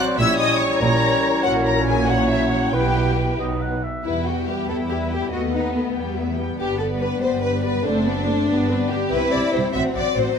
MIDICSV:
0, 0, Header, 1, 11, 480
1, 0, Start_track
1, 0, Key_signature, 1, "minor"
1, 0, Tempo, 419287
1, 222, Time_signature, 6, 3, 24, 8
1, 2144, Tempo, 431965
1, 5984, Tempo, 419874
1, 11767, End_track
2, 0, Start_track
2, 0, Title_t, "Flute section"
2, 0, Program_c, 0, 73
2, 0, Note_on_c, 0, 90, 80
2, 220, Note_off_c, 0, 90, 0
2, 231, Note_on_c, 0, 88, 94
2, 300, Note_off_c, 0, 88, 0
2, 475, Note_on_c, 0, 87, 73
2, 705, Note_off_c, 0, 87, 0
2, 706, Note_on_c, 0, 85, 75
2, 941, Note_on_c, 0, 82, 92
2, 943, Note_off_c, 0, 85, 0
2, 1644, Note_off_c, 0, 82, 0
2, 1651, Note_on_c, 0, 78, 90
2, 1892, Note_off_c, 0, 78, 0
2, 1902, Note_on_c, 0, 82, 69
2, 1971, Note_off_c, 0, 82, 0
2, 2144, Note_on_c, 0, 80, 65
2, 2376, Note_off_c, 0, 80, 0
2, 2393, Note_on_c, 0, 78, 75
2, 2626, Note_off_c, 0, 78, 0
2, 2640, Note_on_c, 0, 76, 63
2, 2868, Note_on_c, 0, 78, 59
2, 2872, Note_off_c, 0, 76, 0
2, 3107, Note_off_c, 0, 78, 0
2, 3111, Note_on_c, 0, 79, 65
2, 3821, Note_off_c, 0, 79, 0
2, 11767, End_track
3, 0, Start_track
3, 0, Title_t, "Violin section"
3, 0, Program_c, 1, 48
3, 221, Note_on_c, 1, 88, 102
3, 443, Note_on_c, 1, 87, 98
3, 457, Note_off_c, 1, 88, 0
3, 689, Note_off_c, 1, 87, 0
3, 692, Note_on_c, 1, 85, 85
3, 913, Note_on_c, 1, 82, 99
3, 936, Note_off_c, 1, 85, 0
3, 1629, Note_off_c, 1, 82, 0
3, 1649, Note_on_c, 1, 78, 98
3, 1741, Note_off_c, 1, 78, 0
3, 1889, Note_on_c, 1, 82, 83
3, 2133, Note_off_c, 1, 82, 0
3, 2142, Note_on_c, 1, 80, 80
3, 2363, Note_on_c, 1, 78, 87
3, 2375, Note_off_c, 1, 80, 0
3, 2605, Note_on_c, 1, 76, 71
3, 2611, Note_off_c, 1, 78, 0
3, 2837, Note_on_c, 1, 78, 69
3, 2849, Note_off_c, 1, 76, 0
3, 3078, Note_on_c, 1, 79, 74
3, 3087, Note_off_c, 1, 78, 0
3, 3819, Note_off_c, 1, 79, 0
3, 4555, Note_on_c, 1, 76, 44
3, 4782, Note_off_c, 1, 76, 0
3, 4793, Note_on_c, 1, 79, 38
3, 5031, Note_on_c, 1, 76, 36
3, 5036, Note_off_c, 1, 79, 0
3, 5272, Note_off_c, 1, 76, 0
3, 5276, Note_on_c, 1, 79, 38
3, 5494, Note_on_c, 1, 76, 37
3, 5513, Note_off_c, 1, 79, 0
3, 5722, Note_off_c, 1, 76, 0
3, 5751, Note_on_c, 1, 79, 41
3, 5966, Note_on_c, 1, 75, 47
3, 5985, Note_off_c, 1, 79, 0
3, 6198, Note_off_c, 1, 75, 0
3, 6212, Note_on_c, 1, 78, 39
3, 6455, Note_on_c, 1, 75, 36
3, 6459, Note_off_c, 1, 78, 0
3, 6693, Note_on_c, 1, 79, 37
3, 6700, Note_off_c, 1, 75, 0
3, 6922, Note_off_c, 1, 79, 0
3, 6945, Note_on_c, 1, 76, 39
3, 7186, Note_off_c, 1, 76, 0
3, 7189, Note_on_c, 1, 79, 43
3, 7429, Note_off_c, 1, 79, 0
3, 7430, Note_on_c, 1, 71, 46
3, 7653, Note_off_c, 1, 71, 0
3, 7680, Note_on_c, 1, 74, 42
3, 7914, Note_off_c, 1, 74, 0
3, 7923, Note_on_c, 1, 71, 40
3, 8147, Note_on_c, 1, 74, 43
3, 8156, Note_off_c, 1, 71, 0
3, 8387, Note_off_c, 1, 74, 0
3, 8396, Note_on_c, 1, 71, 43
3, 8614, Note_off_c, 1, 71, 0
3, 8631, Note_on_c, 1, 74, 48
3, 8868, Note_off_c, 1, 74, 0
3, 8880, Note_on_c, 1, 72, 57
3, 9097, Note_off_c, 1, 72, 0
3, 9114, Note_on_c, 1, 74, 49
3, 9352, Note_off_c, 1, 74, 0
3, 9353, Note_on_c, 1, 72, 47
3, 9592, Note_off_c, 1, 72, 0
3, 9600, Note_on_c, 1, 71, 48
3, 9819, Note_off_c, 1, 71, 0
3, 9849, Note_on_c, 1, 74, 43
3, 10072, Note_on_c, 1, 71, 46
3, 10079, Note_off_c, 1, 74, 0
3, 10311, Note_off_c, 1, 71, 0
3, 10318, Note_on_c, 1, 76, 58
3, 10549, Note_off_c, 1, 76, 0
3, 10563, Note_on_c, 1, 76, 49
3, 10783, Note_off_c, 1, 76, 0
3, 10796, Note_on_c, 1, 76, 47
3, 11028, Note_off_c, 1, 76, 0
3, 11037, Note_on_c, 1, 78, 53
3, 11255, Note_off_c, 1, 78, 0
3, 11269, Note_on_c, 1, 78, 47
3, 11502, Note_off_c, 1, 78, 0
3, 11514, Note_on_c, 1, 78, 50
3, 11728, Note_on_c, 1, 75, 55
3, 11744, Note_off_c, 1, 78, 0
3, 11767, Note_off_c, 1, 75, 0
3, 11767, End_track
4, 0, Start_track
4, 0, Title_t, "Oboe"
4, 0, Program_c, 2, 68
4, 0, Note_on_c, 2, 72, 67
4, 191, Note_off_c, 2, 72, 0
4, 237, Note_on_c, 2, 73, 65
4, 935, Note_off_c, 2, 73, 0
4, 942, Note_on_c, 2, 73, 76
4, 1644, Note_off_c, 2, 73, 0
4, 1666, Note_on_c, 2, 73, 60
4, 2370, Note_off_c, 2, 73, 0
4, 2388, Note_on_c, 2, 73, 64
4, 3105, Note_on_c, 2, 71, 56
4, 3121, Note_off_c, 2, 73, 0
4, 3576, Note_off_c, 2, 71, 0
4, 3841, Note_on_c, 2, 75, 61
4, 4076, Note_on_c, 2, 78, 61
4, 4093, Note_off_c, 2, 75, 0
4, 4327, Note_on_c, 2, 76, 55
4, 4343, Note_off_c, 2, 78, 0
4, 4566, Note_off_c, 2, 76, 0
4, 11767, End_track
5, 0, Start_track
5, 0, Title_t, "Violin section"
5, 0, Program_c, 3, 48
5, 188, Note_on_c, 3, 76, 93
5, 441, Note_off_c, 3, 76, 0
5, 461, Note_on_c, 3, 75, 82
5, 697, Note_on_c, 3, 73, 80
5, 698, Note_off_c, 3, 75, 0
5, 928, Note_on_c, 3, 70, 80
5, 934, Note_off_c, 3, 73, 0
5, 1652, Note_off_c, 3, 70, 0
5, 1672, Note_on_c, 3, 66, 76
5, 1903, Note_off_c, 3, 66, 0
5, 1907, Note_on_c, 3, 70, 65
5, 1998, Note_off_c, 3, 70, 0
5, 2149, Note_on_c, 3, 68, 65
5, 2238, Note_off_c, 3, 68, 0
5, 2372, Note_on_c, 3, 66, 62
5, 2461, Note_off_c, 3, 66, 0
5, 2622, Note_on_c, 3, 64, 60
5, 2854, Note_on_c, 3, 66, 60
5, 2858, Note_off_c, 3, 64, 0
5, 2943, Note_off_c, 3, 66, 0
5, 3107, Note_on_c, 3, 67, 66
5, 3819, Note_off_c, 3, 67, 0
5, 4553, Note_on_c, 3, 64, 65
5, 4781, Note_off_c, 3, 64, 0
5, 4803, Note_on_c, 3, 66, 58
5, 5036, Note_on_c, 3, 67, 64
5, 5041, Note_off_c, 3, 66, 0
5, 5272, Note_on_c, 3, 69, 62
5, 5274, Note_off_c, 3, 67, 0
5, 5361, Note_off_c, 3, 69, 0
5, 5504, Note_on_c, 3, 67, 61
5, 5593, Note_off_c, 3, 67, 0
5, 5758, Note_on_c, 3, 67, 60
5, 5984, Note_off_c, 3, 67, 0
5, 5985, Note_on_c, 3, 59, 62
5, 7163, Note_off_c, 3, 59, 0
5, 7433, Note_on_c, 3, 67, 75
5, 7644, Note_on_c, 3, 69, 62
5, 7654, Note_off_c, 3, 67, 0
5, 7735, Note_off_c, 3, 69, 0
5, 7895, Note_on_c, 3, 71, 67
5, 8136, Note_off_c, 3, 71, 0
5, 8138, Note_on_c, 3, 72, 73
5, 8366, Note_on_c, 3, 71, 71
5, 8377, Note_off_c, 3, 72, 0
5, 8603, Note_off_c, 3, 71, 0
5, 8617, Note_on_c, 3, 71, 74
5, 8856, Note_off_c, 3, 71, 0
5, 8857, Note_on_c, 3, 62, 78
5, 10060, Note_on_c, 3, 67, 77
5, 10066, Note_off_c, 3, 62, 0
5, 10305, Note_off_c, 3, 67, 0
5, 10315, Note_on_c, 3, 71, 90
5, 10552, Note_off_c, 3, 71, 0
5, 10554, Note_on_c, 3, 74, 78
5, 10792, Note_off_c, 3, 74, 0
5, 10796, Note_on_c, 3, 72, 66
5, 11022, Note_on_c, 3, 76, 85
5, 11032, Note_off_c, 3, 72, 0
5, 11113, Note_off_c, 3, 76, 0
5, 11276, Note_on_c, 3, 74, 76
5, 11506, Note_off_c, 3, 74, 0
5, 11525, Note_on_c, 3, 72, 84
5, 11754, Note_off_c, 3, 72, 0
5, 11767, End_track
6, 0, Start_track
6, 0, Title_t, "Viola section"
6, 0, Program_c, 4, 48
6, 0, Note_on_c, 4, 74, 72
6, 227, Note_on_c, 4, 73, 80
6, 228, Note_off_c, 4, 74, 0
6, 1632, Note_off_c, 4, 73, 0
6, 1652, Note_on_c, 4, 70, 75
6, 2377, Note_off_c, 4, 70, 0
6, 2381, Note_on_c, 4, 73, 69
6, 3104, Note_off_c, 4, 73, 0
6, 3110, Note_on_c, 4, 71, 58
6, 4202, Note_off_c, 4, 71, 0
6, 4576, Note_on_c, 4, 55, 40
6, 4580, Note_on_c, 4, 71, 41
6, 4793, Note_off_c, 4, 55, 0
6, 4796, Note_off_c, 4, 71, 0
6, 4826, Note_on_c, 4, 67, 37
6, 4834, Note_on_c, 4, 59, 37
6, 5052, Note_off_c, 4, 67, 0
6, 5054, Note_on_c, 4, 55, 41
6, 5057, Note_off_c, 4, 59, 0
6, 5062, Note_on_c, 4, 71, 38
6, 5284, Note_off_c, 4, 55, 0
6, 5287, Note_off_c, 4, 71, 0
6, 5298, Note_on_c, 4, 59, 37
6, 5300, Note_on_c, 4, 67, 38
6, 5523, Note_off_c, 4, 59, 0
6, 5525, Note_off_c, 4, 67, 0
6, 5547, Note_on_c, 4, 71, 39
6, 5548, Note_on_c, 4, 55, 38
6, 5751, Note_off_c, 4, 55, 0
6, 5751, Note_off_c, 4, 71, 0
6, 5775, Note_on_c, 4, 59, 37
6, 5776, Note_on_c, 4, 67, 36
6, 5998, Note_off_c, 4, 59, 0
6, 5998, Note_off_c, 4, 67, 0
6, 6000, Note_on_c, 4, 57, 40
6, 6004, Note_on_c, 4, 69, 44
6, 6216, Note_off_c, 4, 57, 0
6, 6219, Note_off_c, 4, 69, 0
6, 6255, Note_on_c, 4, 71, 39
6, 6256, Note_on_c, 4, 59, 42
6, 6480, Note_off_c, 4, 71, 0
6, 6480, Note_on_c, 4, 69, 42
6, 6481, Note_off_c, 4, 59, 0
6, 6484, Note_on_c, 4, 57, 43
6, 6713, Note_off_c, 4, 69, 0
6, 6714, Note_on_c, 4, 55, 42
6, 6715, Note_off_c, 4, 57, 0
6, 6719, Note_on_c, 4, 67, 39
6, 6933, Note_off_c, 4, 55, 0
6, 6936, Note_off_c, 4, 67, 0
6, 6945, Note_on_c, 4, 64, 41
6, 6951, Note_on_c, 4, 59, 41
6, 7186, Note_off_c, 4, 64, 0
6, 7187, Note_on_c, 4, 55, 39
6, 7187, Note_on_c, 4, 67, 37
6, 7189, Note_off_c, 4, 59, 0
6, 7409, Note_off_c, 4, 67, 0
6, 7422, Note_on_c, 4, 62, 46
6, 7422, Note_on_c, 4, 67, 43
6, 7428, Note_off_c, 4, 55, 0
6, 7648, Note_off_c, 4, 62, 0
6, 7649, Note_off_c, 4, 67, 0
6, 7661, Note_on_c, 4, 59, 42
6, 7667, Note_on_c, 4, 71, 44
6, 7905, Note_off_c, 4, 59, 0
6, 7908, Note_off_c, 4, 71, 0
6, 7911, Note_on_c, 4, 67, 43
6, 7918, Note_on_c, 4, 62, 46
6, 8148, Note_on_c, 4, 71, 45
6, 8150, Note_off_c, 4, 67, 0
6, 8150, Note_on_c, 4, 59, 45
6, 8153, Note_off_c, 4, 62, 0
6, 8377, Note_on_c, 4, 62, 44
6, 8377, Note_on_c, 4, 67, 46
6, 8387, Note_off_c, 4, 71, 0
6, 8388, Note_off_c, 4, 59, 0
6, 8604, Note_off_c, 4, 62, 0
6, 8604, Note_off_c, 4, 67, 0
6, 8620, Note_on_c, 4, 59, 43
6, 8625, Note_on_c, 4, 71, 43
6, 8856, Note_on_c, 4, 69, 54
6, 8858, Note_on_c, 4, 62, 51
6, 8862, Note_off_c, 4, 59, 0
6, 8865, Note_off_c, 4, 71, 0
6, 9084, Note_off_c, 4, 69, 0
6, 9085, Note_off_c, 4, 62, 0
6, 9092, Note_on_c, 4, 66, 49
6, 9093, Note_on_c, 4, 60, 46
6, 9341, Note_off_c, 4, 66, 0
6, 9342, Note_off_c, 4, 60, 0
6, 9344, Note_on_c, 4, 69, 52
6, 9350, Note_on_c, 4, 62, 50
6, 9568, Note_off_c, 4, 62, 0
6, 9582, Note_on_c, 4, 62, 45
6, 9584, Note_on_c, 4, 67, 50
6, 9588, Note_off_c, 4, 69, 0
6, 9809, Note_off_c, 4, 62, 0
6, 9811, Note_off_c, 4, 67, 0
6, 9831, Note_on_c, 4, 59, 48
6, 9834, Note_on_c, 4, 71, 46
6, 10069, Note_on_c, 4, 62, 49
6, 10070, Note_off_c, 4, 59, 0
6, 10072, Note_off_c, 4, 71, 0
6, 10079, Note_on_c, 4, 67, 46
6, 10287, Note_off_c, 4, 67, 0
6, 10300, Note_on_c, 4, 60, 58
6, 10301, Note_on_c, 4, 67, 57
6, 10309, Note_off_c, 4, 62, 0
6, 10522, Note_off_c, 4, 60, 0
6, 10531, Note_off_c, 4, 67, 0
6, 10536, Note_on_c, 4, 60, 51
6, 10545, Note_on_c, 4, 67, 51
6, 10767, Note_off_c, 4, 60, 0
6, 10767, Note_off_c, 4, 67, 0
6, 10781, Note_on_c, 4, 60, 51
6, 10781, Note_on_c, 4, 67, 53
6, 11000, Note_off_c, 4, 60, 0
6, 11014, Note_on_c, 4, 60, 48
6, 11015, Note_on_c, 4, 66, 52
6, 11020, Note_off_c, 4, 67, 0
6, 11237, Note_off_c, 4, 66, 0
6, 11241, Note_off_c, 4, 60, 0
6, 11251, Note_on_c, 4, 66, 46
6, 11254, Note_on_c, 4, 60, 47
6, 11479, Note_off_c, 4, 60, 0
6, 11480, Note_off_c, 4, 66, 0
6, 11493, Note_on_c, 4, 60, 44
6, 11493, Note_on_c, 4, 66, 46
6, 11719, Note_off_c, 4, 66, 0
6, 11729, Note_on_c, 4, 59, 54
6, 11733, Note_off_c, 4, 60, 0
6, 11733, Note_on_c, 4, 66, 53
6, 11767, Note_off_c, 4, 59, 0
6, 11767, Note_off_c, 4, 66, 0
6, 11767, End_track
7, 0, Start_track
7, 0, Title_t, "Clarinet"
7, 0, Program_c, 5, 71
7, 0, Note_on_c, 5, 66, 67
7, 193, Note_off_c, 5, 66, 0
7, 232, Note_on_c, 5, 64, 66
7, 933, Note_off_c, 5, 64, 0
7, 949, Note_on_c, 5, 64, 59
7, 1648, Note_off_c, 5, 64, 0
7, 1662, Note_on_c, 5, 64, 58
7, 2368, Note_off_c, 5, 64, 0
7, 2383, Note_on_c, 5, 64, 57
7, 3091, Note_off_c, 5, 64, 0
7, 3104, Note_on_c, 5, 64, 48
7, 3566, Note_off_c, 5, 64, 0
7, 3843, Note_on_c, 5, 63, 44
7, 4292, Note_off_c, 5, 63, 0
7, 11767, End_track
8, 0, Start_track
8, 0, Title_t, "Cello section"
8, 0, Program_c, 6, 48
8, 220, Note_on_c, 6, 46, 89
8, 791, Note_off_c, 6, 46, 0
8, 935, Note_on_c, 6, 46, 78
8, 1504, Note_off_c, 6, 46, 0
8, 1653, Note_on_c, 6, 46, 81
8, 3057, Note_off_c, 6, 46, 0
8, 3097, Note_on_c, 6, 47, 61
8, 3814, Note_off_c, 6, 47, 0
8, 3830, Note_on_c, 6, 47, 51
8, 4325, Note_off_c, 6, 47, 0
8, 5273, Note_on_c, 6, 64, 49
8, 5938, Note_off_c, 6, 64, 0
8, 5977, Note_on_c, 6, 66, 60
8, 6068, Note_off_c, 6, 66, 0
8, 6223, Note_on_c, 6, 63, 52
8, 6457, Note_on_c, 6, 59, 49
8, 6460, Note_off_c, 6, 63, 0
8, 6549, Note_off_c, 6, 59, 0
8, 6706, Note_on_c, 6, 55, 44
8, 6941, Note_off_c, 6, 55, 0
8, 6949, Note_on_c, 6, 57, 48
8, 7188, Note_off_c, 6, 57, 0
8, 7193, Note_on_c, 6, 59, 52
8, 8132, Note_off_c, 6, 59, 0
8, 8154, Note_on_c, 6, 55, 53
8, 8868, Note_off_c, 6, 55, 0
8, 8877, Note_on_c, 6, 57, 64
8, 9107, Note_off_c, 6, 57, 0
8, 9119, Note_on_c, 6, 59, 58
8, 9355, Note_off_c, 6, 59, 0
8, 9362, Note_on_c, 6, 57, 57
8, 9597, Note_off_c, 6, 57, 0
8, 9598, Note_on_c, 6, 59, 59
8, 9830, Note_off_c, 6, 59, 0
8, 9845, Note_on_c, 6, 60, 60
8, 9937, Note_off_c, 6, 60, 0
8, 10083, Note_on_c, 6, 62, 60
8, 10175, Note_off_c, 6, 62, 0
8, 10317, Note_on_c, 6, 64, 72
8, 11019, Note_off_c, 6, 64, 0
8, 11035, Note_on_c, 6, 60, 60
8, 11734, Note_off_c, 6, 60, 0
8, 11767, End_track
9, 0, Start_track
9, 0, Title_t, "French horn section"
9, 0, Program_c, 7, 60
9, 0, Note_on_c, 7, 54, 62
9, 0, Note_on_c, 7, 60, 64
9, 190, Note_off_c, 7, 60, 0
9, 193, Note_off_c, 7, 54, 0
9, 225, Note_on_c, 7, 52, 67
9, 226, Note_on_c, 7, 61, 67
9, 3061, Note_off_c, 7, 52, 0
9, 3061, Note_off_c, 7, 61, 0
9, 3095, Note_on_c, 7, 52, 45
9, 3097, Note_on_c, 7, 64, 52
9, 3813, Note_off_c, 7, 52, 0
9, 3828, Note_off_c, 7, 64, 0
9, 3844, Note_on_c, 7, 54, 46
9, 3845, Note_on_c, 7, 63, 50
9, 4327, Note_off_c, 7, 54, 0
9, 4327, Note_off_c, 7, 63, 0
9, 4557, Note_on_c, 7, 59, 43
9, 4569, Note_on_c, 7, 55, 41
9, 5937, Note_off_c, 7, 59, 0
9, 5942, Note_off_c, 7, 55, 0
9, 5977, Note_on_c, 7, 57, 44
9, 5983, Note_on_c, 7, 59, 43
9, 6687, Note_off_c, 7, 57, 0
9, 6690, Note_off_c, 7, 59, 0
9, 6723, Note_on_c, 7, 59, 48
9, 6732, Note_on_c, 7, 55, 47
9, 7422, Note_off_c, 7, 59, 0
9, 7441, Note_off_c, 7, 55, 0
9, 7453, Note_on_c, 7, 59, 51
9, 7458, Note_on_c, 7, 55, 50
9, 8850, Note_off_c, 7, 59, 0
9, 8852, Note_off_c, 7, 55, 0
9, 8882, Note_on_c, 7, 60, 51
9, 8890, Note_on_c, 7, 57, 48
9, 9598, Note_off_c, 7, 60, 0
9, 9602, Note_off_c, 7, 57, 0
9, 9622, Note_on_c, 7, 55, 59
9, 9628, Note_on_c, 7, 59, 62
9, 10312, Note_off_c, 7, 55, 0
9, 10315, Note_off_c, 7, 59, 0
9, 10317, Note_on_c, 7, 60, 55
9, 10323, Note_on_c, 7, 52, 54
9, 10990, Note_off_c, 7, 52, 0
9, 11026, Note_on_c, 7, 54, 62
9, 11703, Note_off_c, 7, 60, 0
9, 11767, Note_off_c, 7, 54, 0
9, 11767, End_track
10, 0, Start_track
10, 0, Title_t, "Bassoon"
10, 0, Program_c, 8, 70
10, 0, Note_on_c, 8, 54, 77
10, 195, Note_off_c, 8, 54, 0
10, 222, Note_on_c, 8, 55, 67
10, 928, Note_off_c, 8, 55, 0
10, 938, Note_on_c, 8, 55, 71
10, 1656, Note_on_c, 8, 54, 68
10, 1673, Note_off_c, 8, 55, 0
10, 2377, Note_off_c, 8, 54, 0
10, 2383, Note_on_c, 8, 54, 61
10, 3105, Note_on_c, 8, 59, 55
10, 3122, Note_off_c, 8, 54, 0
10, 3576, Note_off_c, 8, 59, 0
10, 3838, Note_on_c, 8, 59, 49
10, 4290, Note_off_c, 8, 59, 0
10, 11767, End_track
11, 0, Start_track
11, 0, Title_t, "Double bass section"
11, 0, Program_c, 10, 48
11, 228, Note_on_c, 10, 34, 88
11, 795, Note_off_c, 10, 34, 0
11, 940, Note_on_c, 10, 34, 81
11, 1506, Note_off_c, 10, 34, 0
11, 1655, Note_on_c, 10, 34, 74
11, 3058, Note_off_c, 10, 34, 0
11, 3097, Note_on_c, 10, 35, 57
11, 3814, Note_off_c, 10, 35, 0
11, 3837, Note_on_c, 10, 35, 50
11, 4328, Note_off_c, 10, 35, 0
11, 4566, Note_on_c, 10, 40, 49
11, 5195, Note_off_c, 10, 40, 0
11, 5281, Note_on_c, 10, 40, 51
11, 5903, Note_off_c, 10, 40, 0
11, 5993, Note_on_c, 10, 39, 54
11, 6625, Note_off_c, 10, 39, 0
11, 6713, Note_on_c, 10, 40, 55
11, 7346, Note_off_c, 10, 40, 0
11, 7436, Note_on_c, 10, 31, 57
11, 8067, Note_off_c, 10, 31, 0
11, 8153, Note_on_c, 10, 31, 54
11, 8783, Note_off_c, 10, 31, 0
11, 8880, Note_on_c, 10, 30, 63
11, 9512, Note_off_c, 10, 30, 0
11, 9608, Note_on_c, 10, 31, 55
11, 10234, Note_off_c, 10, 31, 0
11, 10330, Note_on_c, 10, 36, 61
11, 10421, Note_off_c, 10, 36, 0
11, 10567, Note_on_c, 10, 36, 51
11, 10659, Note_off_c, 10, 36, 0
11, 10815, Note_on_c, 10, 36, 60
11, 10906, Note_off_c, 10, 36, 0
11, 11047, Note_on_c, 10, 33, 61
11, 11138, Note_off_c, 10, 33, 0
11, 11276, Note_on_c, 10, 33, 55
11, 11367, Note_off_c, 10, 33, 0
11, 11511, Note_on_c, 10, 33, 56
11, 11602, Note_off_c, 10, 33, 0
11, 11767, End_track
0, 0, End_of_file